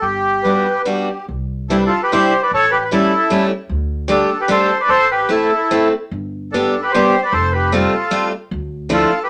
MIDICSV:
0, 0, Header, 1, 5, 480
1, 0, Start_track
1, 0, Key_signature, 0, "major"
1, 0, Tempo, 416956
1, 29, Time_signature, 3, 2, 24, 8
1, 2428, Tempo, 397614
1, 5788, Tempo, 406780
1, 8668, Tempo, 394218
1, 11059, End_track
2, 0, Start_track
2, 0, Title_t, "Accordion"
2, 0, Program_c, 0, 21
2, 494, Note_on_c, 0, 71, 72
2, 984, Note_on_c, 0, 67, 57
2, 1003, Note_off_c, 0, 71, 0
2, 1443, Note_off_c, 0, 67, 0
2, 11059, End_track
3, 0, Start_track
3, 0, Title_t, "Bandoneon"
3, 0, Program_c, 1, 23
3, 18, Note_on_c, 1, 67, 80
3, 942, Note_off_c, 1, 67, 0
3, 1952, Note_on_c, 1, 69, 60
3, 1959, Note_on_c, 1, 64, 47
3, 2031, Note_on_c, 1, 71, 60
3, 2034, Note_off_c, 1, 64, 0
3, 2039, Note_off_c, 1, 69, 0
3, 2116, Note_off_c, 1, 71, 0
3, 2142, Note_on_c, 1, 69, 81
3, 2155, Note_on_c, 1, 65, 55
3, 2317, Note_off_c, 1, 65, 0
3, 2329, Note_off_c, 1, 69, 0
3, 2336, Note_on_c, 1, 71, 75
3, 2337, Note_on_c, 1, 67, 55
3, 2434, Note_off_c, 1, 67, 0
3, 2440, Note_on_c, 1, 72, 90
3, 2444, Note_off_c, 1, 71, 0
3, 2456, Note_on_c, 1, 67, 68
3, 2783, Note_off_c, 1, 67, 0
3, 2806, Note_on_c, 1, 74, 73
3, 2810, Note_off_c, 1, 72, 0
3, 2812, Note_on_c, 1, 71, 64
3, 2914, Note_off_c, 1, 71, 0
3, 2923, Note_off_c, 1, 74, 0
3, 2947, Note_on_c, 1, 69, 92
3, 2949, Note_on_c, 1, 73, 103
3, 3151, Note_on_c, 1, 71, 86
3, 3156, Note_off_c, 1, 69, 0
3, 3157, Note_off_c, 1, 73, 0
3, 3167, Note_on_c, 1, 67, 57
3, 3294, Note_off_c, 1, 71, 0
3, 3307, Note_off_c, 1, 67, 0
3, 3312, Note_on_c, 1, 71, 61
3, 3393, Note_off_c, 1, 71, 0
3, 3411, Note_on_c, 1, 64, 58
3, 3416, Note_on_c, 1, 69, 79
3, 4068, Note_off_c, 1, 64, 0
3, 4071, Note_off_c, 1, 69, 0
3, 4835, Note_on_c, 1, 62, 53
3, 4842, Note_on_c, 1, 69, 76
3, 5167, Note_off_c, 1, 62, 0
3, 5202, Note_on_c, 1, 67, 53
3, 5203, Note_on_c, 1, 71, 76
3, 5206, Note_off_c, 1, 69, 0
3, 5305, Note_off_c, 1, 67, 0
3, 5317, Note_off_c, 1, 71, 0
3, 5324, Note_on_c, 1, 69, 85
3, 5330, Note_on_c, 1, 72, 98
3, 5653, Note_off_c, 1, 69, 0
3, 5682, Note_on_c, 1, 74, 65
3, 5688, Note_on_c, 1, 71, 57
3, 5692, Note_off_c, 1, 72, 0
3, 5784, Note_on_c, 1, 69, 87
3, 5790, Note_off_c, 1, 71, 0
3, 5792, Note_on_c, 1, 72, 118
3, 5799, Note_off_c, 1, 74, 0
3, 6009, Note_off_c, 1, 69, 0
3, 6036, Note_off_c, 1, 72, 0
3, 6045, Note_on_c, 1, 71, 81
3, 6056, Note_on_c, 1, 67, 64
3, 6263, Note_off_c, 1, 67, 0
3, 6275, Note_on_c, 1, 69, 68
3, 6280, Note_off_c, 1, 71, 0
3, 6280, Note_on_c, 1, 64, 49
3, 6955, Note_off_c, 1, 69, 0
3, 6957, Note_off_c, 1, 64, 0
3, 7707, Note_on_c, 1, 69, 59
3, 7712, Note_on_c, 1, 62, 58
3, 8049, Note_off_c, 1, 62, 0
3, 8064, Note_on_c, 1, 71, 63
3, 8083, Note_off_c, 1, 69, 0
3, 8083, Note_on_c, 1, 67, 58
3, 8171, Note_on_c, 1, 72, 92
3, 8173, Note_off_c, 1, 67, 0
3, 8191, Note_on_c, 1, 67, 71
3, 8192, Note_off_c, 1, 71, 0
3, 8524, Note_off_c, 1, 67, 0
3, 8539, Note_on_c, 1, 74, 76
3, 8550, Note_off_c, 1, 72, 0
3, 8566, Note_on_c, 1, 71, 60
3, 8647, Note_on_c, 1, 72, 91
3, 8665, Note_off_c, 1, 74, 0
3, 8667, Note_on_c, 1, 69, 82
3, 8668, Note_off_c, 1, 71, 0
3, 8895, Note_off_c, 1, 69, 0
3, 8896, Note_on_c, 1, 71, 74
3, 8909, Note_off_c, 1, 72, 0
3, 8932, Note_on_c, 1, 67, 60
3, 9144, Note_off_c, 1, 67, 0
3, 9146, Note_on_c, 1, 69, 74
3, 9150, Note_off_c, 1, 71, 0
3, 9172, Note_on_c, 1, 65, 56
3, 9817, Note_off_c, 1, 69, 0
3, 9830, Note_off_c, 1, 65, 0
3, 10613, Note_on_c, 1, 65, 67
3, 10616, Note_on_c, 1, 69, 85
3, 10937, Note_off_c, 1, 65, 0
3, 10974, Note_off_c, 1, 69, 0
3, 10980, Note_on_c, 1, 67, 71
3, 10987, Note_on_c, 1, 71, 68
3, 11059, Note_off_c, 1, 67, 0
3, 11059, Note_off_c, 1, 71, 0
3, 11059, End_track
4, 0, Start_track
4, 0, Title_t, "Steel-string acoustic guitar"
4, 0, Program_c, 2, 25
4, 512, Note_on_c, 2, 55, 41
4, 519, Note_on_c, 2, 59, 33
4, 525, Note_on_c, 2, 62, 37
4, 538, Note_on_c, 2, 66, 37
4, 754, Note_off_c, 2, 59, 0
4, 755, Note_off_c, 2, 55, 0
4, 755, Note_off_c, 2, 62, 0
4, 756, Note_off_c, 2, 66, 0
4, 983, Note_on_c, 2, 62, 59
4, 986, Note_on_c, 2, 55, 65
4, 990, Note_on_c, 2, 59, 49
4, 1001, Note_on_c, 2, 66, 60
4, 1238, Note_off_c, 2, 62, 0
4, 1241, Note_off_c, 2, 55, 0
4, 1241, Note_off_c, 2, 59, 0
4, 1242, Note_off_c, 2, 66, 0
4, 1959, Note_on_c, 2, 55, 61
4, 1964, Note_on_c, 2, 62, 52
4, 1969, Note_on_c, 2, 60, 49
4, 1974, Note_on_c, 2, 64, 48
4, 2198, Note_off_c, 2, 55, 0
4, 2199, Note_off_c, 2, 60, 0
4, 2201, Note_off_c, 2, 62, 0
4, 2202, Note_off_c, 2, 64, 0
4, 2443, Note_on_c, 2, 55, 59
4, 2447, Note_on_c, 2, 60, 55
4, 2453, Note_on_c, 2, 64, 79
4, 2454, Note_on_c, 2, 62, 54
4, 2682, Note_off_c, 2, 60, 0
4, 2682, Note_off_c, 2, 62, 0
4, 2683, Note_off_c, 2, 55, 0
4, 2686, Note_off_c, 2, 64, 0
4, 3398, Note_on_c, 2, 61, 46
4, 3405, Note_on_c, 2, 57, 49
4, 3408, Note_on_c, 2, 55, 64
4, 3416, Note_on_c, 2, 64, 64
4, 3636, Note_off_c, 2, 61, 0
4, 3640, Note_off_c, 2, 57, 0
4, 3642, Note_off_c, 2, 55, 0
4, 3643, Note_off_c, 2, 64, 0
4, 3867, Note_on_c, 2, 55, 64
4, 3871, Note_on_c, 2, 57, 63
4, 3880, Note_on_c, 2, 61, 60
4, 3881, Note_on_c, 2, 64, 64
4, 4107, Note_off_c, 2, 57, 0
4, 4109, Note_off_c, 2, 55, 0
4, 4109, Note_off_c, 2, 64, 0
4, 4113, Note_off_c, 2, 61, 0
4, 4808, Note_on_c, 2, 55, 70
4, 4817, Note_on_c, 2, 67, 54
4, 4822, Note_on_c, 2, 57, 49
4, 4825, Note_on_c, 2, 62, 49
4, 5059, Note_off_c, 2, 55, 0
4, 5061, Note_off_c, 2, 67, 0
4, 5064, Note_off_c, 2, 62, 0
4, 5066, Note_off_c, 2, 57, 0
4, 5292, Note_on_c, 2, 55, 67
4, 5300, Note_on_c, 2, 57, 64
4, 5300, Note_on_c, 2, 67, 68
4, 5302, Note_on_c, 2, 62, 60
4, 5543, Note_off_c, 2, 55, 0
4, 5544, Note_off_c, 2, 67, 0
4, 5545, Note_off_c, 2, 62, 0
4, 5547, Note_off_c, 2, 57, 0
4, 6254, Note_on_c, 2, 57, 62
4, 6259, Note_on_c, 2, 60, 51
4, 6269, Note_on_c, 2, 64, 47
4, 6273, Note_on_c, 2, 69, 55
4, 6505, Note_off_c, 2, 60, 0
4, 6506, Note_off_c, 2, 57, 0
4, 6506, Note_off_c, 2, 69, 0
4, 6507, Note_off_c, 2, 64, 0
4, 6751, Note_on_c, 2, 57, 60
4, 6753, Note_on_c, 2, 60, 58
4, 6761, Note_on_c, 2, 64, 60
4, 6767, Note_on_c, 2, 69, 46
4, 6998, Note_off_c, 2, 57, 0
4, 7000, Note_off_c, 2, 60, 0
4, 7000, Note_off_c, 2, 69, 0
4, 7001, Note_off_c, 2, 64, 0
4, 7734, Note_on_c, 2, 59, 43
4, 7735, Note_on_c, 2, 55, 57
4, 7740, Note_on_c, 2, 62, 46
4, 7744, Note_on_c, 2, 67, 53
4, 7966, Note_off_c, 2, 62, 0
4, 7968, Note_off_c, 2, 59, 0
4, 7969, Note_off_c, 2, 55, 0
4, 7970, Note_off_c, 2, 67, 0
4, 8210, Note_on_c, 2, 55, 73
4, 8214, Note_on_c, 2, 59, 58
4, 8217, Note_on_c, 2, 62, 58
4, 8219, Note_on_c, 2, 67, 59
4, 8442, Note_off_c, 2, 59, 0
4, 8442, Note_off_c, 2, 67, 0
4, 8443, Note_off_c, 2, 55, 0
4, 8445, Note_off_c, 2, 62, 0
4, 9143, Note_on_c, 2, 55, 53
4, 9147, Note_on_c, 2, 57, 51
4, 9150, Note_on_c, 2, 60, 59
4, 9160, Note_on_c, 2, 65, 59
4, 9388, Note_off_c, 2, 57, 0
4, 9389, Note_off_c, 2, 55, 0
4, 9392, Note_off_c, 2, 60, 0
4, 9393, Note_off_c, 2, 65, 0
4, 9610, Note_on_c, 2, 55, 60
4, 9615, Note_on_c, 2, 57, 50
4, 9617, Note_on_c, 2, 65, 76
4, 9623, Note_on_c, 2, 60, 56
4, 9860, Note_off_c, 2, 57, 0
4, 9860, Note_off_c, 2, 60, 0
4, 9861, Note_off_c, 2, 55, 0
4, 9862, Note_off_c, 2, 65, 0
4, 10566, Note_on_c, 2, 53, 59
4, 10571, Note_on_c, 2, 57, 54
4, 10574, Note_on_c, 2, 62, 52
4, 10575, Note_on_c, 2, 64, 74
4, 10818, Note_off_c, 2, 62, 0
4, 10820, Note_off_c, 2, 53, 0
4, 10820, Note_off_c, 2, 57, 0
4, 10823, Note_off_c, 2, 64, 0
4, 11059, End_track
5, 0, Start_track
5, 0, Title_t, "Upright bass"
5, 0, Program_c, 3, 32
5, 24, Note_on_c, 3, 31, 65
5, 653, Note_off_c, 3, 31, 0
5, 1479, Note_on_c, 3, 36, 75
5, 2095, Note_off_c, 3, 36, 0
5, 2916, Note_on_c, 3, 33, 81
5, 3536, Note_off_c, 3, 33, 0
5, 4342, Note_on_c, 3, 38, 85
5, 4968, Note_off_c, 3, 38, 0
5, 5781, Note_on_c, 3, 33, 71
5, 6409, Note_off_c, 3, 33, 0
5, 7230, Note_on_c, 3, 31, 84
5, 7855, Note_off_c, 3, 31, 0
5, 8659, Note_on_c, 3, 29, 100
5, 9286, Note_off_c, 3, 29, 0
5, 10105, Note_on_c, 3, 38, 101
5, 10731, Note_off_c, 3, 38, 0
5, 11059, End_track
0, 0, End_of_file